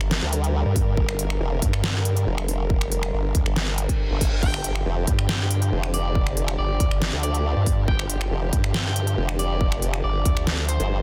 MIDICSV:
0, 0, Header, 1, 7, 480
1, 0, Start_track
1, 0, Key_signature, -2, "minor"
1, 0, Tempo, 431655
1, 1083, Time_signature, 4, 2, 24, 8
1, 12256, End_track
2, 0, Start_track
2, 0, Title_t, "Clean electric guitar"
2, 0, Program_c, 0, 27
2, 4923, Note_on_c, 0, 79, 97
2, 5791, Note_off_c, 0, 79, 0
2, 5883, Note_on_c, 0, 79, 91
2, 6511, Note_off_c, 0, 79, 0
2, 6602, Note_on_c, 0, 74, 99
2, 7231, Note_off_c, 0, 74, 0
2, 7323, Note_on_c, 0, 74, 95
2, 7951, Note_off_c, 0, 74, 0
2, 8043, Note_on_c, 0, 74, 100
2, 8671, Note_off_c, 0, 74, 0
2, 8763, Note_on_c, 0, 79, 97
2, 9631, Note_off_c, 0, 79, 0
2, 9723, Note_on_c, 0, 79, 91
2, 10351, Note_off_c, 0, 79, 0
2, 10443, Note_on_c, 0, 74, 94
2, 11071, Note_off_c, 0, 74, 0
2, 11163, Note_on_c, 0, 74, 96
2, 11791, Note_off_c, 0, 74, 0
2, 11883, Note_on_c, 0, 72, 100
2, 12256, Note_off_c, 0, 72, 0
2, 12256, End_track
3, 0, Start_track
3, 0, Title_t, "String section"
3, 0, Program_c, 1, 48
3, 0, Note_on_c, 1, 50, 80
3, 0, Note_on_c, 1, 55, 73
3, 0, Note_on_c, 1, 70, 90
3, 4879, Note_off_c, 1, 55, 0
3, 4903, Note_off_c, 1, 70, 0
3, 4923, Note_on_c, 1, 53, 75
3, 4923, Note_on_c, 1, 67, 90
3, 12256, Note_off_c, 1, 50, 0
3, 12256, Note_off_c, 1, 53, 0
3, 12256, Note_off_c, 1, 67, 0
3, 12256, End_track
4, 0, Start_track
4, 0, Title_t, "Wobble bass"
4, 0, Program_c, 2, 39
4, 8, Note_on_c, 2, 31, 99
4, 228, Note_off_c, 2, 31, 0
4, 728, Note_on_c, 2, 43, 105
4, 1064, Note_off_c, 2, 43, 0
4, 1083, Note_on_c, 2, 31, 93
4, 1544, Note_off_c, 2, 31, 0
4, 1803, Note_on_c, 2, 43, 100
4, 2504, Note_off_c, 2, 43, 0
4, 3483, Note_on_c, 2, 31, 93
4, 3704, Note_off_c, 2, 31, 0
4, 3723, Note_on_c, 2, 38, 97
4, 3828, Note_off_c, 2, 38, 0
4, 4923, Note_on_c, 2, 31, 92
4, 5384, Note_off_c, 2, 31, 0
4, 5643, Note_on_c, 2, 43, 104
4, 6344, Note_off_c, 2, 43, 0
4, 7323, Note_on_c, 2, 31, 92
4, 7544, Note_off_c, 2, 31, 0
4, 7563, Note_on_c, 2, 38, 95
4, 7668, Note_off_c, 2, 38, 0
4, 7688, Note_on_c, 2, 31, 104
4, 7908, Note_off_c, 2, 31, 0
4, 8408, Note_on_c, 2, 43, 106
4, 8745, Note_off_c, 2, 43, 0
4, 8763, Note_on_c, 2, 31, 98
4, 9224, Note_off_c, 2, 31, 0
4, 9483, Note_on_c, 2, 43, 102
4, 10184, Note_off_c, 2, 43, 0
4, 11163, Note_on_c, 2, 31, 97
4, 11385, Note_off_c, 2, 31, 0
4, 11403, Note_on_c, 2, 38, 103
4, 11508, Note_off_c, 2, 38, 0
4, 11528, Note_on_c, 2, 38, 103
4, 11988, Note_off_c, 2, 38, 0
4, 12256, End_track
5, 0, Start_track
5, 0, Title_t, "Wobble bass"
5, 0, Program_c, 3, 39
5, 248, Note_on_c, 3, 38, 96
5, 708, Note_off_c, 3, 38, 0
5, 1563, Note_on_c, 3, 29, 96
5, 1785, Note_off_c, 3, 29, 0
5, 2523, Note_on_c, 3, 29, 96
5, 3465, Note_off_c, 3, 29, 0
5, 3848, Note_on_c, 3, 31, 97
5, 4308, Note_off_c, 3, 31, 0
5, 4568, Note_on_c, 3, 31, 103
5, 4788, Note_off_c, 3, 31, 0
5, 5403, Note_on_c, 3, 29, 98
5, 5624, Note_off_c, 3, 29, 0
5, 6363, Note_on_c, 3, 29, 97
5, 7304, Note_off_c, 3, 29, 0
5, 7928, Note_on_c, 3, 38, 98
5, 8388, Note_off_c, 3, 38, 0
5, 9243, Note_on_c, 3, 29, 94
5, 9464, Note_off_c, 3, 29, 0
5, 10203, Note_on_c, 3, 29, 94
5, 11145, Note_off_c, 3, 29, 0
5, 12008, Note_on_c, 3, 31, 95
5, 12256, Note_off_c, 3, 31, 0
5, 12256, End_track
6, 0, Start_track
6, 0, Title_t, "Reverse cymbal"
6, 0, Program_c, 4, 119
6, 3963, Note_on_c, 4, 60, 56
6, 4923, Note_off_c, 4, 60, 0
6, 12256, End_track
7, 0, Start_track
7, 0, Title_t, "Drums"
7, 8, Note_on_c, 9, 26, 56
7, 119, Note_off_c, 9, 26, 0
7, 123, Note_on_c, 9, 38, 122
7, 234, Note_off_c, 9, 38, 0
7, 363, Note_on_c, 9, 42, 78
7, 474, Note_off_c, 9, 42, 0
7, 488, Note_on_c, 9, 42, 36
7, 599, Note_off_c, 9, 42, 0
7, 843, Note_on_c, 9, 36, 109
7, 843, Note_on_c, 9, 46, 96
7, 954, Note_off_c, 9, 36, 0
7, 954, Note_off_c, 9, 46, 0
7, 1083, Note_on_c, 9, 36, 122
7, 1194, Note_off_c, 9, 36, 0
7, 1208, Note_on_c, 9, 26, 53
7, 1319, Note_off_c, 9, 26, 0
7, 1323, Note_on_c, 9, 42, 81
7, 1434, Note_off_c, 9, 42, 0
7, 1448, Note_on_c, 9, 26, 66
7, 1559, Note_off_c, 9, 26, 0
7, 1803, Note_on_c, 9, 36, 101
7, 1803, Note_on_c, 9, 42, 76
7, 1914, Note_off_c, 9, 36, 0
7, 1914, Note_off_c, 9, 42, 0
7, 1928, Note_on_c, 9, 26, 57
7, 2039, Note_off_c, 9, 26, 0
7, 2043, Note_on_c, 9, 38, 125
7, 2154, Note_off_c, 9, 38, 0
7, 2283, Note_on_c, 9, 42, 79
7, 2394, Note_off_c, 9, 42, 0
7, 2408, Note_on_c, 9, 42, 39
7, 2519, Note_off_c, 9, 42, 0
7, 2648, Note_on_c, 9, 26, 80
7, 2759, Note_off_c, 9, 26, 0
7, 2763, Note_on_c, 9, 46, 97
7, 2874, Note_off_c, 9, 46, 0
7, 3003, Note_on_c, 9, 36, 124
7, 3114, Note_off_c, 9, 36, 0
7, 3128, Note_on_c, 9, 26, 54
7, 3239, Note_off_c, 9, 26, 0
7, 3243, Note_on_c, 9, 42, 84
7, 3354, Note_off_c, 9, 42, 0
7, 3368, Note_on_c, 9, 26, 61
7, 3479, Note_off_c, 9, 26, 0
7, 3723, Note_on_c, 9, 36, 102
7, 3723, Note_on_c, 9, 42, 77
7, 3834, Note_off_c, 9, 36, 0
7, 3834, Note_off_c, 9, 42, 0
7, 3848, Note_on_c, 9, 26, 52
7, 3959, Note_off_c, 9, 26, 0
7, 3963, Note_on_c, 9, 38, 120
7, 4074, Note_off_c, 9, 38, 0
7, 4203, Note_on_c, 9, 42, 81
7, 4314, Note_off_c, 9, 42, 0
7, 4327, Note_on_c, 9, 36, 57
7, 4328, Note_on_c, 9, 42, 41
7, 4439, Note_off_c, 9, 36, 0
7, 4439, Note_off_c, 9, 42, 0
7, 4683, Note_on_c, 9, 36, 98
7, 4683, Note_on_c, 9, 46, 99
7, 4794, Note_off_c, 9, 36, 0
7, 4794, Note_off_c, 9, 46, 0
7, 4923, Note_on_c, 9, 36, 121
7, 4923, Note_on_c, 9, 49, 82
7, 5034, Note_off_c, 9, 36, 0
7, 5034, Note_off_c, 9, 49, 0
7, 5047, Note_on_c, 9, 26, 49
7, 5159, Note_off_c, 9, 26, 0
7, 5162, Note_on_c, 9, 42, 87
7, 5274, Note_off_c, 9, 42, 0
7, 5287, Note_on_c, 9, 26, 64
7, 5398, Note_off_c, 9, 26, 0
7, 5642, Note_on_c, 9, 42, 82
7, 5643, Note_on_c, 9, 36, 106
7, 5754, Note_off_c, 9, 36, 0
7, 5754, Note_off_c, 9, 42, 0
7, 5767, Note_on_c, 9, 26, 48
7, 5879, Note_off_c, 9, 26, 0
7, 5882, Note_on_c, 9, 38, 127
7, 5994, Note_off_c, 9, 38, 0
7, 6123, Note_on_c, 9, 42, 86
7, 6234, Note_off_c, 9, 42, 0
7, 6248, Note_on_c, 9, 42, 39
7, 6359, Note_off_c, 9, 42, 0
7, 6488, Note_on_c, 9, 26, 79
7, 6599, Note_off_c, 9, 26, 0
7, 6603, Note_on_c, 9, 46, 100
7, 6714, Note_off_c, 9, 46, 0
7, 6843, Note_on_c, 9, 36, 127
7, 6954, Note_off_c, 9, 36, 0
7, 6967, Note_on_c, 9, 26, 51
7, 7079, Note_off_c, 9, 26, 0
7, 7083, Note_on_c, 9, 42, 88
7, 7194, Note_off_c, 9, 42, 0
7, 7207, Note_on_c, 9, 26, 63
7, 7319, Note_off_c, 9, 26, 0
7, 7563, Note_on_c, 9, 36, 111
7, 7563, Note_on_c, 9, 42, 80
7, 7674, Note_off_c, 9, 36, 0
7, 7674, Note_off_c, 9, 42, 0
7, 7687, Note_on_c, 9, 26, 50
7, 7799, Note_off_c, 9, 26, 0
7, 7802, Note_on_c, 9, 38, 127
7, 7914, Note_off_c, 9, 38, 0
7, 8043, Note_on_c, 9, 42, 88
7, 8154, Note_off_c, 9, 42, 0
7, 8167, Note_on_c, 9, 42, 42
7, 8279, Note_off_c, 9, 42, 0
7, 8523, Note_on_c, 9, 36, 109
7, 8523, Note_on_c, 9, 46, 99
7, 8634, Note_off_c, 9, 36, 0
7, 8634, Note_off_c, 9, 46, 0
7, 8763, Note_on_c, 9, 36, 127
7, 8874, Note_off_c, 9, 36, 0
7, 8888, Note_on_c, 9, 26, 50
7, 8999, Note_off_c, 9, 26, 0
7, 9003, Note_on_c, 9, 42, 85
7, 9114, Note_off_c, 9, 42, 0
7, 9128, Note_on_c, 9, 26, 61
7, 9239, Note_off_c, 9, 26, 0
7, 9483, Note_on_c, 9, 36, 114
7, 9483, Note_on_c, 9, 42, 78
7, 9594, Note_off_c, 9, 36, 0
7, 9594, Note_off_c, 9, 42, 0
7, 9608, Note_on_c, 9, 26, 52
7, 9719, Note_off_c, 9, 26, 0
7, 9723, Note_on_c, 9, 38, 127
7, 9834, Note_off_c, 9, 38, 0
7, 9963, Note_on_c, 9, 42, 83
7, 10074, Note_off_c, 9, 42, 0
7, 10088, Note_on_c, 9, 42, 42
7, 10199, Note_off_c, 9, 42, 0
7, 10328, Note_on_c, 9, 26, 81
7, 10439, Note_off_c, 9, 26, 0
7, 10443, Note_on_c, 9, 46, 94
7, 10554, Note_off_c, 9, 46, 0
7, 10683, Note_on_c, 9, 36, 127
7, 10794, Note_off_c, 9, 36, 0
7, 10808, Note_on_c, 9, 26, 54
7, 10919, Note_off_c, 9, 26, 0
7, 10923, Note_on_c, 9, 42, 80
7, 11034, Note_off_c, 9, 42, 0
7, 11048, Note_on_c, 9, 26, 64
7, 11159, Note_off_c, 9, 26, 0
7, 11403, Note_on_c, 9, 36, 111
7, 11403, Note_on_c, 9, 42, 80
7, 11514, Note_off_c, 9, 36, 0
7, 11514, Note_off_c, 9, 42, 0
7, 11528, Note_on_c, 9, 26, 53
7, 11639, Note_off_c, 9, 26, 0
7, 11643, Note_on_c, 9, 38, 127
7, 11754, Note_off_c, 9, 38, 0
7, 11883, Note_on_c, 9, 42, 85
7, 11994, Note_off_c, 9, 42, 0
7, 12008, Note_on_c, 9, 42, 38
7, 12119, Note_off_c, 9, 42, 0
7, 12256, End_track
0, 0, End_of_file